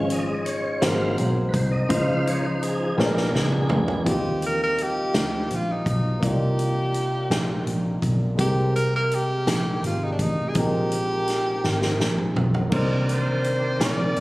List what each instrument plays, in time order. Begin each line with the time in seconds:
Already playing: fingered electric bass G#1, upright piano G#2 G#3 C#4 F4 C#5, tonewheel organ F3 G#3 C#4
0.10 tonewheel organ D#5, closed hi-hat
0.38 tonewheel organ D#5
0.45 tonewheel organ C#5, closed hi-hat
0.81 fingered electric bass G#1, upright piano G#2 A#3 F#4 G#4 C5, tonewheel organ F#3 A#3 C4 F5, snare, closed hi-hat
1.18 fingered electric bass B1, closed hi-hat
1.49 tonewheel organ B4
1.54 fingered electric bass C2, tonewheel organ C5, kick, closed hi-hat
1.71 tonewheel organ D#5
1.88 fingered electric bass C#2, upright piano C#3 C#4 F4 C5 D#5, tonewheel organ F3 D#4 C5 F5, kick, closed hi-hat
2.27 tonewheel organ C#5, closed hi-hat
2.45 tonewheel organ C5
2.63 tonewheel organ G#4, closed hi-hat
2.97 fingered electric bass A#1, upright piano A#2 B3 G#4 A#4 C#5, tonewheel organ G#3 B3 D4 A#4, snare
3.06 upright piano D5
3.17 snare
3.34 fingered electric bass C#2, tonewheel organ G#4, snare
3.52 tonewheel organ G#4, mid tom
3.69 fingered electric bass D2, floor tom
3.88 floor tom
4.04 fingered electric bass D#2, upright piano D#3 C4 F4 G4, french horn section G3 C4 D#4 F4, kick, closed hi-hat
4.08 tenor saxophone G4, upright piano D#5
4.42 closed hi-hat
4.46 tenor saxophone A#4
4.63 tenor saxophone A#4
4.78 closed hi-hat
4.83 tenor saxophone G4
5.14 fingered electric bass D2, snare, closed hi-hat
5.51 fingered electric bass A#1, closed hi-hat
5.55 tenor saxophone F4
5.72 tenor saxophone D#4
5.86 fingered electric bass B1, tenor saxophone D#4, kick, closed hi-hat
6.20 fingered electric bass C2, upright piano C3 A#3 D4 F4, french horn section A#3 D5, kick, closed hi-hat
6.24 upright piano D#4 D5, tenor saxophone G4
6.59 closed hi-hat
6.94 closed hi-hat
7.30 fingered electric bass A#1, snare, closed hi-hat
7.66 fingered electric bass A#1, closed hi-hat
8.02 fingered electric bass B1, kick, closed hi-hat
8.35 upright piano C3 G#3 B3 G4, french horn section C4, kick, closed hi-hat
8.39 fingered electric bass C2, french horn section G#3 G4, tenor saxophone G4, upright piano A#4
8.43 upright piano C4
8.76 tenor saxophone A#4, closed hi-hat
8.96 tenor saxophone A#4
9.11 tenor saxophone G4, closed hi-hat
9.47 fingered electric bass A#1, snare, closed hi-hat
9.83 fingered electric bass G#1, tenor saxophone F4, closed hi-hat
10.04 tenor saxophone D#4
10.12 tenor saxophone D4
10.19 fingered electric bass A1, tenor saxophone D#4, kick, closed hi-hat
10.49 tenor saxophone G#4
10.53 fingered electric bass A#1, upright piano A#2 G#3 C4 D#4, french horn section C4 D#4, kick, closed hi-hat
10.57 tenor saxophone G4, upright piano A#4
10.92 closed hi-hat
11.28 snare, closed hi-hat
11.64 fingered electric bass G#1, snare
11.82 snare
11.99 fingered electric bass A#1, snare
12.18 mid tom
12.35 fingered electric bass B1, floor tom
12.54 floor tom
12.69 fingered electric bass C2, upright piano C3 A#3 D4 D#4, tonewheel organ D3 A#4 D5, french horn section D#3 D5, kick, crash
12.74 tonewheel organ C4, tenor saxophone A#4, upright piano C5
12.79 tonewheel organ D#3
13.09 closed hi-hat
13.13 tenor saxophone C5
13.44 closed hi-hat
13.80 fingered electric bass A#1, tenor saxophone D5, snare, closed hi-hat
14.16 fingered electric bass A#1, closed hi-hat